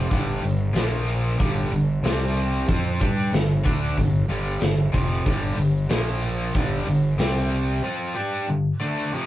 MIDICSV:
0, 0, Header, 1, 5, 480
1, 0, Start_track
1, 0, Key_signature, -2, "minor"
1, 0, Tempo, 643777
1, 81, Time_signature, 4, 2, 24, 8
1, 6906, End_track
2, 0, Start_track
2, 0, Title_t, "Overdriven electric guitar"
2, 0, Program_c, 0, 29
2, 0, Note_on_c, 0, 48, 96
2, 0, Note_on_c, 0, 53, 93
2, 75, Note_off_c, 0, 48, 0
2, 77, Note_off_c, 0, 53, 0
2, 6906, End_track
3, 0, Start_track
3, 0, Title_t, "Overdriven electric guitar"
3, 0, Program_c, 1, 29
3, 63, Note_on_c, 1, 43, 88
3, 67, Note_on_c, 1, 50, 85
3, 72, Note_on_c, 1, 55, 89
3, 296, Note_off_c, 1, 50, 0
3, 298, Note_off_c, 1, 43, 0
3, 305, Note_on_c, 1, 50, 60
3, 307, Note_on_c, 1, 43, 51
3, 309, Note_off_c, 1, 55, 0
3, 505, Note_off_c, 1, 50, 0
3, 506, Note_off_c, 1, 43, 0
3, 546, Note_on_c, 1, 46, 82
3, 550, Note_on_c, 1, 53, 82
3, 552, Note_on_c, 1, 58, 86
3, 1023, Note_on_c, 1, 43, 81
3, 1026, Note_off_c, 1, 46, 0
3, 1028, Note_off_c, 1, 53, 0
3, 1029, Note_on_c, 1, 50, 86
3, 1030, Note_off_c, 1, 58, 0
3, 1033, Note_on_c, 1, 55, 89
3, 1265, Note_off_c, 1, 43, 0
3, 1268, Note_off_c, 1, 50, 0
3, 1270, Note_off_c, 1, 55, 0
3, 1279, Note_on_c, 1, 43, 58
3, 1283, Note_on_c, 1, 50, 67
3, 1473, Note_off_c, 1, 43, 0
3, 1474, Note_off_c, 1, 50, 0
3, 1521, Note_on_c, 1, 48, 83
3, 1526, Note_on_c, 1, 55, 89
3, 1531, Note_on_c, 1, 60, 90
3, 1994, Note_off_c, 1, 48, 0
3, 1997, Note_off_c, 1, 55, 0
3, 1997, Note_off_c, 1, 60, 0
3, 2000, Note_on_c, 1, 53, 76
3, 2006, Note_on_c, 1, 60, 83
3, 2009, Note_on_c, 1, 65, 96
3, 2234, Note_off_c, 1, 53, 0
3, 2235, Note_off_c, 1, 60, 0
3, 2238, Note_on_c, 1, 55, 75
3, 2239, Note_off_c, 1, 65, 0
3, 2242, Note_on_c, 1, 67, 91
3, 2243, Note_on_c, 1, 62, 91
3, 2473, Note_off_c, 1, 55, 0
3, 2475, Note_off_c, 1, 67, 0
3, 2476, Note_off_c, 1, 62, 0
3, 2483, Note_on_c, 1, 50, 63
3, 2484, Note_on_c, 1, 43, 61
3, 2674, Note_off_c, 1, 50, 0
3, 2675, Note_off_c, 1, 43, 0
3, 2710, Note_on_c, 1, 50, 82
3, 2716, Note_on_c, 1, 57, 90
3, 2722, Note_on_c, 1, 62, 89
3, 2949, Note_off_c, 1, 50, 0
3, 2952, Note_off_c, 1, 57, 0
3, 2955, Note_off_c, 1, 62, 0
3, 2963, Note_on_c, 1, 43, 58
3, 2963, Note_on_c, 1, 50, 68
3, 3155, Note_off_c, 1, 43, 0
3, 3155, Note_off_c, 1, 50, 0
3, 3202, Note_on_c, 1, 43, 74
3, 3208, Note_on_c, 1, 55, 86
3, 3209, Note_on_c, 1, 50, 77
3, 3423, Note_off_c, 1, 43, 0
3, 3432, Note_off_c, 1, 50, 0
3, 3432, Note_on_c, 1, 43, 61
3, 3438, Note_off_c, 1, 55, 0
3, 3441, Note_on_c, 1, 50, 66
3, 3630, Note_off_c, 1, 43, 0
3, 3634, Note_off_c, 1, 50, 0
3, 3670, Note_on_c, 1, 41, 87
3, 3675, Note_on_c, 1, 48, 86
3, 3683, Note_on_c, 1, 53, 83
3, 3909, Note_off_c, 1, 41, 0
3, 3912, Note_off_c, 1, 48, 0
3, 3913, Note_on_c, 1, 43, 84
3, 3916, Note_off_c, 1, 53, 0
3, 3921, Note_on_c, 1, 50, 90
3, 3921, Note_on_c, 1, 55, 90
3, 4146, Note_off_c, 1, 43, 0
3, 4151, Note_off_c, 1, 50, 0
3, 4155, Note_off_c, 1, 55, 0
3, 4155, Note_on_c, 1, 43, 55
3, 4160, Note_on_c, 1, 50, 70
3, 4351, Note_off_c, 1, 43, 0
3, 4353, Note_off_c, 1, 50, 0
3, 4395, Note_on_c, 1, 46, 82
3, 4397, Note_on_c, 1, 53, 89
3, 4404, Note_on_c, 1, 58, 98
3, 4872, Note_off_c, 1, 46, 0
3, 4873, Note_off_c, 1, 53, 0
3, 4873, Note_on_c, 1, 43, 87
3, 4877, Note_off_c, 1, 58, 0
3, 4877, Note_on_c, 1, 50, 87
3, 4883, Note_on_c, 1, 55, 95
3, 5107, Note_off_c, 1, 50, 0
3, 5108, Note_off_c, 1, 43, 0
3, 5115, Note_on_c, 1, 50, 67
3, 5116, Note_off_c, 1, 55, 0
3, 5117, Note_on_c, 1, 43, 61
3, 5312, Note_off_c, 1, 50, 0
3, 5313, Note_off_c, 1, 43, 0
3, 5356, Note_on_c, 1, 48, 82
3, 5359, Note_on_c, 1, 55, 95
3, 5362, Note_on_c, 1, 60, 101
3, 5832, Note_off_c, 1, 48, 0
3, 5833, Note_off_c, 1, 60, 0
3, 5834, Note_off_c, 1, 55, 0
3, 5835, Note_on_c, 1, 53, 90
3, 5842, Note_on_c, 1, 60, 96
3, 5845, Note_on_c, 1, 65, 95
3, 6071, Note_off_c, 1, 60, 0
3, 6072, Note_off_c, 1, 53, 0
3, 6074, Note_on_c, 1, 55, 80
3, 6075, Note_off_c, 1, 65, 0
3, 6078, Note_on_c, 1, 62, 94
3, 6079, Note_on_c, 1, 67, 98
3, 6312, Note_off_c, 1, 55, 0
3, 6314, Note_off_c, 1, 62, 0
3, 6314, Note_off_c, 1, 67, 0
3, 6318, Note_on_c, 1, 43, 56
3, 6321, Note_on_c, 1, 50, 66
3, 6513, Note_off_c, 1, 43, 0
3, 6514, Note_off_c, 1, 50, 0
3, 6562, Note_on_c, 1, 50, 79
3, 6562, Note_on_c, 1, 57, 93
3, 6564, Note_on_c, 1, 62, 89
3, 6795, Note_off_c, 1, 50, 0
3, 6796, Note_off_c, 1, 57, 0
3, 6797, Note_off_c, 1, 62, 0
3, 6797, Note_on_c, 1, 41, 78
3, 6805, Note_on_c, 1, 48, 89
3, 6809, Note_on_c, 1, 53, 96
3, 6906, Note_off_c, 1, 41, 0
3, 6906, Note_off_c, 1, 48, 0
3, 6906, Note_off_c, 1, 53, 0
3, 6906, End_track
4, 0, Start_track
4, 0, Title_t, "Fingered electric bass"
4, 0, Program_c, 2, 33
4, 83, Note_on_c, 2, 31, 83
4, 306, Note_off_c, 2, 31, 0
4, 320, Note_on_c, 2, 31, 67
4, 544, Note_off_c, 2, 31, 0
4, 555, Note_on_c, 2, 34, 84
4, 1008, Note_off_c, 2, 34, 0
4, 1044, Note_on_c, 2, 31, 82
4, 1266, Note_off_c, 2, 31, 0
4, 1277, Note_on_c, 2, 31, 74
4, 1502, Note_off_c, 2, 31, 0
4, 1515, Note_on_c, 2, 36, 91
4, 1968, Note_off_c, 2, 36, 0
4, 2003, Note_on_c, 2, 41, 80
4, 2226, Note_off_c, 2, 41, 0
4, 2243, Note_on_c, 2, 43, 81
4, 2466, Note_off_c, 2, 43, 0
4, 2478, Note_on_c, 2, 31, 74
4, 2703, Note_off_c, 2, 31, 0
4, 2726, Note_on_c, 2, 38, 83
4, 2948, Note_off_c, 2, 38, 0
4, 2965, Note_on_c, 2, 31, 71
4, 3187, Note_off_c, 2, 31, 0
4, 3198, Note_on_c, 2, 31, 88
4, 3423, Note_off_c, 2, 31, 0
4, 3442, Note_on_c, 2, 31, 75
4, 3665, Note_off_c, 2, 31, 0
4, 3682, Note_on_c, 2, 29, 82
4, 3906, Note_off_c, 2, 29, 0
4, 3923, Note_on_c, 2, 31, 82
4, 4146, Note_off_c, 2, 31, 0
4, 4156, Note_on_c, 2, 31, 74
4, 4383, Note_off_c, 2, 31, 0
4, 4394, Note_on_c, 2, 34, 82
4, 4849, Note_off_c, 2, 34, 0
4, 4885, Note_on_c, 2, 31, 79
4, 5108, Note_off_c, 2, 31, 0
4, 5120, Note_on_c, 2, 31, 81
4, 5345, Note_off_c, 2, 31, 0
4, 5364, Note_on_c, 2, 36, 91
4, 5814, Note_off_c, 2, 36, 0
4, 6906, End_track
5, 0, Start_track
5, 0, Title_t, "Drums"
5, 84, Note_on_c, 9, 36, 94
5, 88, Note_on_c, 9, 46, 63
5, 158, Note_off_c, 9, 36, 0
5, 162, Note_off_c, 9, 46, 0
5, 324, Note_on_c, 9, 46, 49
5, 399, Note_off_c, 9, 46, 0
5, 563, Note_on_c, 9, 46, 65
5, 569, Note_on_c, 9, 38, 98
5, 637, Note_off_c, 9, 46, 0
5, 644, Note_off_c, 9, 38, 0
5, 805, Note_on_c, 9, 46, 44
5, 880, Note_off_c, 9, 46, 0
5, 1043, Note_on_c, 9, 46, 63
5, 1044, Note_on_c, 9, 36, 96
5, 1117, Note_off_c, 9, 46, 0
5, 1118, Note_off_c, 9, 36, 0
5, 1285, Note_on_c, 9, 46, 45
5, 1359, Note_off_c, 9, 46, 0
5, 1527, Note_on_c, 9, 46, 63
5, 1534, Note_on_c, 9, 38, 98
5, 1602, Note_off_c, 9, 46, 0
5, 1609, Note_off_c, 9, 38, 0
5, 1766, Note_on_c, 9, 46, 46
5, 1840, Note_off_c, 9, 46, 0
5, 2003, Note_on_c, 9, 36, 94
5, 2003, Note_on_c, 9, 46, 62
5, 2077, Note_off_c, 9, 46, 0
5, 2078, Note_off_c, 9, 36, 0
5, 2246, Note_on_c, 9, 36, 94
5, 2251, Note_on_c, 9, 46, 49
5, 2320, Note_off_c, 9, 36, 0
5, 2326, Note_off_c, 9, 46, 0
5, 2487, Note_on_c, 9, 46, 67
5, 2493, Note_on_c, 9, 38, 102
5, 2561, Note_off_c, 9, 46, 0
5, 2568, Note_off_c, 9, 38, 0
5, 2725, Note_on_c, 9, 36, 91
5, 2730, Note_on_c, 9, 46, 51
5, 2800, Note_off_c, 9, 36, 0
5, 2805, Note_off_c, 9, 46, 0
5, 2964, Note_on_c, 9, 36, 81
5, 2964, Note_on_c, 9, 46, 71
5, 3038, Note_off_c, 9, 36, 0
5, 3039, Note_off_c, 9, 46, 0
5, 3202, Note_on_c, 9, 46, 51
5, 3277, Note_off_c, 9, 46, 0
5, 3438, Note_on_c, 9, 46, 69
5, 3445, Note_on_c, 9, 38, 99
5, 3512, Note_off_c, 9, 46, 0
5, 3519, Note_off_c, 9, 38, 0
5, 3682, Note_on_c, 9, 46, 50
5, 3684, Note_on_c, 9, 36, 90
5, 3757, Note_off_c, 9, 46, 0
5, 3759, Note_off_c, 9, 36, 0
5, 3923, Note_on_c, 9, 46, 64
5, 3924, Note_on_c, 9, 36, 95
5, 3998, Note_off_c, 9, 36, 0
5, 3998, Note_off_c, 9, 46, 0
5, 4160, Note_on_c, 9, 46, 49
5, 4235, Note_off_c, 9, 46, 0
5, 4398, Note_on_c, 9, 46, 69
5, 4404, Note_on_c, 9, 38, 102
5, 4472, Note_off_c, 9, 46, 0
5, 4479, Note_off_c, 9, 38, 0
5, 4641, Note_on_c, 9, 46, 49
5, 4716, Note_off_c, 9, 46, 0
5, 4883, Note_on_c, 9, 36, 93
5, 4884, Note_on_c, 9, 46, 63
5, 4958, Note_off_c, 9, 36, 0
5, 4958, Note_off_c, 9, 46, 0
5, 5126, Note_on_c, 9, 46, 46
5, 5201, Note_off_c, 9, 46, 0
5, 5361, Note_on_c, 9, 46, 64
5, 5368, Note_on_c, 9, 38, 101
5, 5436, Note_off_c, 9, 46, 0
5, 5443, Note_off_c, 9, 38, 0
5, 5604, Note_on_c, 9, 46, 43
5, 5678, Note_off_c, 9, 46, 0
5, 6906, End_track
0, 0, End_of_file